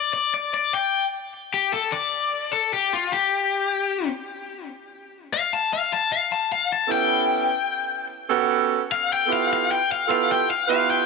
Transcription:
0, 0, Header, 1, 3, 480
1, 0, Start_track
1, 0, Tempo, 597610
1, 1374, Time_signature, 4, 2, 24, 8
1, 8883, End_track
2, 0, Start_track
2, 0, Title_t, "Overdriven electric guitar"
2, 0, Program_c, 0, 29
2, 0, Note_on_c, 0, 74, 101
2, 99, Note_off_c, 0, 74, 0
2, 109, Note_on_c, 0, 74, 77
2, 257, Note_off_c, 0, 74, 0
2, 275, Note_on_c, 0, 74, 101
2, 420, Note_off_c, 0, 74, 0
2, 435, Note_on_c, 0, 74, 95
2, 580, Note_off_c, 0, 74, 0
2, 599, Note_on_c, 0, 79, 100
2, 841, Note_off_c, 0, 79, 0
2, 1235, Note_on_c, 0, 67, 87
2, 1380, Note_off_c, 0, 67, 0
2, 1393, Note_on_c, 0, 69, 93
2, 1539, Note_off_c, 0, 69, 0
2, 1544, Note_on_c, 0, 74, 104
2, 2005, Note_off_c, 0, 74, 0
2, 2032, Note_on_c, 0, 69, 78
2, 2179, Note_off_c, 0, 69, 0
2, 2198, Note_on_c, 0, 67, 90
2, 2342, Note_off_c, 0, 67, 0
2, 2357, Note_on_c, 0, 65, 103
2, 2502, Note_off_c, 0, 65, 0
2, 2508, Note_on_c, 0, 67, 96
2, 3278, Note_off_c, 0, 67, 0
2, 4286, Note_on_c, 0, 77, 114
2, 4427, Note_off_c, 0, 77, 0
2, 4443, Note_on_c, 0, 81, 88
2, 4585, Note_off_c, 0, 81, 0
2, 4604, Note_on_c, 0, 77, 116
2, 4746, Note_off_c, 0, 77, 0
2, 4764, Note_on_c, 0, 81, 88
2, 4906, Note_off_c, 0, 81, 0
2, 4915, Note_on_c, 0, 77, 99
2, 5061, Note_off_c, 0, 77, 0
2, 5076, Note_on_c, 0, 81, 91
2, 5222, Note_off_c, 0, 81, 0
2, 5240, Note_on_c, 0, 77, 104
2, 5384, Note_off_c, 0, 77, 0
2, 5403, Note_on_c, 0, 81, 88
2, 5545, Note_off_c, 0, 81, 0
2, 5557, Note_on_c, 0, 79, 93
2, 6478, Note_off_c, 0, 79, 0
2, 7164, Note_on_c, 0, 77, 103
2, 7306, Note_off_c, 0, 77, 0
2, 7333, Note_on_c, 0, 79, 94
2, 7471, Note_off_c, 0, 79, 0
2, 7493, Note_on_c, 0, 77, 90
2, 7630, Note_off_c, 0, 77, 0
2, 7656, Note_on_c, 0, 77, 93
2, 7792, Note_off_c, 0, 77, 0
2, 7804, Note_on_c, 0, 79, 85
2, 7946, Note_off_c, 0, 79, 0
2, 7967, Note_on_c, 0, 77, 96
2, 8107, Note_off_c, 0, 77, 0
2, 8119, Note_on_c, 0, 77, 101
2, 8263, Note_off_c, 0, 77, 0
2, 8289, Note_on_c, 0, 79, 100
2, 8428, Note_off_c, 0, 79, 0
2, 8438, Note_on_c, 0, 77, 95
2, 8582, Note_off_c, 0, 77, 0
2, 8601, Note_on_c, 0, 77, 87
2, 8744, Note_off_c, 0, 77, 0
2, 8760, Note_on_c, 0, 79, 87
2, 8883, Note_off_c, 0, 79, 0
2, 8883, End_track
3, 0, Start_track
3, 0, Title_t, "Saxophone section"
3, 0, Program_c, 1, 65
3, 5523, Note_on_c, 1, 61, 66
3, 5524, Note_on_c, 1, 59, 76
3, 5524, Note_on_c, 1, 64, 66
3, 5526, Note_on_c, 1, 67, 63
3, 5526, Note_on_c, 1, 69, 78
3, 6072, Note_off_c, 1, 59, 0
3, 6072, Note_off_c, 1, 61, 0
3, 6073, Note_off_c, 1, 64, 0
3, 6074, Note_off_c, 1, 67, 0
3, 6074, Note_off_c, 1, 69, 0
3, 6656, Note_on_c, 1, 61, 80
3, 6657, Note_on_c, 1, 59, 99
3, 6658, Note_on_c, 1, 66, 83
3, 6659, Note_on_c, 1, 67, 82
3, 6661, Note_on_c, 1, 69, 102
3, 7101, Note_off_c, 1, 61, 0
3, 7102, Note_off_c, 1, 59, 0
3, 7102, Note_off_c, 1, 66, 0
3, 7103, Note_off_c, 1, 67, 0
3, 7103, Note_off_c, 1, 69, 0
3, 7438, Note_on_c, 1, 59, 66
3, 7439, Note_on_c, 1, 64, 62
3, 7441, Note_on_c, 1, 65, 61
3, 7442, Note_on_c, 1, 69, 75
3, 7443, Note_on_c, 1, 67, 69
3, 7858, Note_off_c, 1, 59, 0
3, 7859, Note_off_c, 1, 64, 0
3, 7860, Note_off_c, 1, 65, 0
3, 7861, Note_off_c, 1, 67, 0
3, 7861, Note_off_c, 1, 69, 0
3, 8095, Note_on_c, 1, 59, 82
3, 8095, Note_on_c, 1, 64, 70
3, 8095, Note_on_c, 1, 65, 76
3, 8098, Note_on_c, 1, 69, 90
3, 8099, Note_on_c, 1, 67, 75
3, 8435, Note_off_c, 1, 59, 0
3, 8435, Note_off_c, 1, 64, 0
3, 8436, Note_off_c, 1, 65, 0
3, 8437, Note_off_c, 1, 67, 0
3, 8437, Note_off_c, 1, 69, 0
3, 8573, Note_on_c, 1, 59, 83
3, 8574, Note_on_c, 1, 64, 78
3, 8575, Note_on_c, 1, 65, 68
3, 8577, Note_on_c, 1, 67, 74
3, 8577, Note_on_c, 1, 71, 92
3, 8883, Note_off_c, 1, 59, 0
3, 8883, Note_off_c, 1, 64, 0
3, 8883, Note_off_c, 1, 65, 0
3, 8883, Note_off_c, 1, 67, 0
3, 8883, Note_off_c, 1, 71, 0
3, 8883, End_track
0, 0, End_of_file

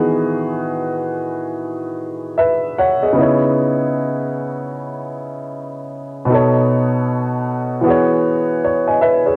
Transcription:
0, 0, Header, 1, 2, 480
1, 0, Start_track
1, 0, Key_signature, 4, "major"
1, 0, Tempo, 779221
1, 32, Time_signature, 4, 2, 24, 8
1, 5766, End_track
2, 0, Start_track
2, 0, Title_t, "Upright piano"
2, 0, Program_c, 0, 0
2, 0, Control_c, 0, 64, 127
2, 0, Note_on_c, 0, 51, 70
2, 0, Note_on_c, 0, 52, 73
2, 0, Note_on_c, 0, 59, 66
2, 0, Note_on_c, 0, 66, 75
2, 0, Note_on_c, 0, 68, 84
2, 1465, Note_on_c, 0, 76, 69
2, 1471, Note_on_c, 0, 71, 59
2, 1481, Note_off_c, 0, 68, 0
2, 1673, Note_off_c, 0, 52, 0
2, 1680, Note_off_c, 0, 59, 0
2, 1686, Note_off_c, 0, 51, 0
2, 1693, Note_off_c, 0, 66, 0
2, 1696, Note_off_c, 0, 76, 0
2, 1700, Note_off_c, 0, 71, 0
2, 1715, Note_on_c, 0, 78, 76
2, 1720, Note_on_c, 0, 73, 64
2, 1857, Note_off_c, 0, 78, 0
2, 1860, Note_off_c, 0, 73, 0
2, 1864, Note_on_c, 0, 75, 63
2, 1866, Note_on_c, 0, 68, 53
2, 1926, Note_on_c, 0, 49, 72
2, 1939, Note_on_c, 0, 59, 63
2, 1954, Note_on_c, 0, 63, 66
2, 1959, Control_c, 0, 64, 0
2, 1966, Note_on_c, 0, 64, 67
2, 1981, Note_on_c, 0, 73, 67
2, 2065, Control_c, 0, 64, 127
2, 2091, Note_off_c, 0, 75, 0
2, 2093, Note_off_c, 0, 68, 0
2, 3834, Note_off_c, 0, 49, 0
2, 3841, Note_off_c, 0, 59, 0
2, 3849, Note_off_c, 0, 63, 0
2, 3852, Note_on_c, 0, 47, 68
2, 3854, Note_off_c, 0, 64, 0
2, 3862, Note_off_c, 0, 73, 0
2, 3865, Note_on_c, 0, 59, 64
2, 3879, Note_on_c, 0, 63, 64
2, 3880, Control_c, 0, 64, 0
2, 3892, Note_on_c, 0, 69, 66
2, 3908, Note_on_c, 0, 73, 79
2, 4000, Control_c, 0, 64, 127
2, 4802, Note_off_c, 0, 47, 0
2, 4809, Note_off_c, 0, 59, 0
2, 4812, Note_on_c, 0, 52, 73
2, 4816, Note_off_c, 0, 63, 0
2, 4823, Note_off_c, 0, 69, 0
2, 4828, Note_on_c, 0, 59, 70
2, 4831, Note_off_c, 0, 73, 0
2, 4840, Control_c, 0, 64, 0
2, 4840, Note_on_c, 0, 66, 65
2, 4854, Note_on_c, 0, 68, 63
2, 4868, Note_on_c, 0, 73, 87
2, 4938, Control_c, 0, 64, 127
2, 5078, Note_off_c, 0, 68, 0
2, 5086, Note_off_c, 0, 73, 0
2, 5326, Note_on_c, 0, 73, 67
2, 5468, Note_on_c, 0, 80, 59
2, 5470, Note_on_c, 0, 75, 54
2, 5550, Note_off_c, 0, 80, 0
2, 5551, Note_off_c, 0, 75, 0
2, 5553, Note_on_c, 0, 76, 73
2, 5557, Note_on_c, 0, 71, 65
2, 5696, Note_off_c, 0, 76, 0
2, 5697, Note_off_c, 0, 73, 0
2, 5698, Note_off_c, 0, 71, 0
2, 5707, Note_on_c, 0, 73, 53
2, 5711, Note_on_c, 0, 68, 52
2, 5763, Note_off_c, 0, 52, 0
2, 5766, Note_off_c, 0, 59, 0
2, 5766, Note_off_c, 0, 66, 0
2, 5766, Note_off_c, 0, 68, 0
2, 5766, Note_off_c, 0, 73, 0
2, 5766, End_track
0, 0, End_of_file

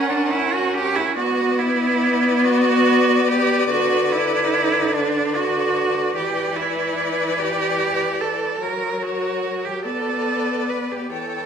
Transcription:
0, 0, Header, 1, 5, 480
1, 0, Start_track
1, 0, Key_signature, 2, "minor"
1, 0, Tempo, 842697
1, 662, Time_signature, 6, 3, 24, 8
1, 2574, Tempo, 819672
1, 5934, Tempo, 867052
1, 6599, End_track
2, 0, Start_track
2, 0, Title_t, "Violin"
2, 0, Program_c, 0, 40
2, 0, Note_on_c, 0, 78, 75
2, 641, Note_off_c, 0, 78, 0
2, 666, Note_on_c, 0, 74, 87
2, 3511, Note_off_c, 0, 74, 0
2, 3532, Note_on_c, 0, 74, 80
2, 4947, Note_off_c, 0, 74, 0
2, 4972, Note_on_c, 0, 73, 64
2, 5669, Note_off_c, 0, 73, 0
2, 5696, Note_on_c, 0, 74, 64
2, 6389, Note_off_c, 0, 74, 0
2, 6415, Note_on_c, 0, 79, 58
2, 6599, Note_off_c, 0, 79, 0
2, 6599, End_track
3, 0, Start_track
3, 0, Title_t, "Violin"
3, 0, Program_c, 1, 40
3, 0, Note_on_c, 1, 70, 79
3, 642, Note_off_c, 1, 70, 0
3, 669, Note_on_c, 1, 71, 85
3, 3513, Note_off_c, 1, 71, 0
3, 3539, Note_on_c, 1, 71, 83
3, 4951, Note_off_c, 1, 71, 0
3, 4977, Note_on_c, 1, 70, 66
3, 5671, Note_off_c, 1, 70, 0
3, 5701, Note_on_c, 1, 71, 64
3, 6391, Note_off_c, 1, 71, 0
3, 6414, Note_on_c, 1, 73, 56
3, 6599, Note_off_c, 1, 73, 0
3, 6599, End_track
4, 0, Start_track
4, 0, Title_t, "Cello"
4, 0, Program_c, 2, 42
4, 0, Note_on_c, 2, 61, 116
4, 57, Note_on_c, 2, 62, 99
4, 66, Note_off_c, 2, 61, 0
4, 177, Note_on_c, 2, 64, 106
4, 185, Note_off_c, 2, 62, 0
4, 303, Note_on_c, 2, 66, 109
4, 312, Note_off_c, 2, 64, 0
4, 421, Note_on_c, 2, 67, 118
4, 429, Note_off_c, 2, 66, 0
4, 547, Note_on_c, 2, 64, 109
4, 555, Note_off_c, 2, 67, 0
4, 661, Note_off_c, 2, 64, 0
4, 665, Note_on_c, 2, 66, 113
4, 907, Note_on_c, 2, 64, 106
4, 915, Note_off_c, 2, 66, 0
4, 1391, Note_on_c, 2, 66, 125
4, 1400, Note_off_c, 2, 64, 0
4, 1865, Note_on_c, 2, 67, 119
4, 1873, Note_off_c, 2, 66, 0
4, 2099, Note_off_c, 2, 67, 0
4, 2102, Note_on_c, 2, 66, 114
4, 2351, Note_on_c, 2, 64, 115
4, 2359, Note_off_c, 2, 66, 0
4, 2820, Note_on_c, 2, 62, 115
4, 2829, Note_off_c, 2, 64, 0
4, 3065, Note_on_c, 2, 66, 109
4, 3074, Note_off_c, 2, 62, 0
4, 3531, Note_off_c, 2, 66, 0
4, 3534, Note_on_c, 2, 67, 101
4, 3773, Note_on_c, 2, 64, 101
4, 3781, Note_off_c, 2, 67, 0
4, 4256, Note_on_c, 2, 67, 111
4, 4265, Note_off_c, 2, 64, 0
4, 4738, Note_on_c, 2, 69, 95
4, 4747, Note_off_c, 2, 67, 0
4, 4978, Note_on_c, 2, 70, 97
4, 4986, Note_off_c, 2, 69, 0
4, 5213, Note_on_c, 2, 66, 90
4, 5222, Note_off_c, 2, 70, 0
4, 5580, Note_on_c, 2, 67, 83
4, 5589, Note_off_c, 2, 66, 0
4, 5693, Note_off_c, 2, 67, 0
4, 5697, Note_on_c, 2, 69, 97
4, 6175, Note_on_c, 2, 71, 78
4, 6183, Note_off_c, 2, 69, 0
4, 6299, Note_on_c, 2, 67, 71
4, 6307, Note_off_c, 2, 71, 0
4, 6412, Note_off_c, 2, 67, 0
4, 6415, Note_on_c, 2, 69, 87
4, 6599, Note_off_c, 2, 69, 0
4, 6599, End_track
5, 0, Start_track
5, 0, Title_t, "Viola"
5, 0, Program_c, 3, 41
5, 0, Note_on_c, 3, 61, 97
5, 660, Note_on_c, 3, 59, 105
5, 669, Note_off_c, 3, 61, 0
5, 2098, Note_off_c, 3, 59, 0
5, 2101, Note_on_c, 3, 50, 99
5, 3511, Note_off_c, 3, 50, 0
5, 3533, Note_on_c, 3, 52, 90
5, 4948, Note_off_c, 3, 52, 0
5, 4973, Note_on_c, 3, 54, 72
5, 5696, Note_on_c, 3, 59, 73
5, 5704, Note_off_c, 3, 54, 0
5, 6411, Note_off_c, 3, 59, 0
5, 6416, Note_on_c, 3, 52, 61
5, 6599, Note_off_c, 3, 52, 0
5, 6599, End_track
0, 0, End_of_file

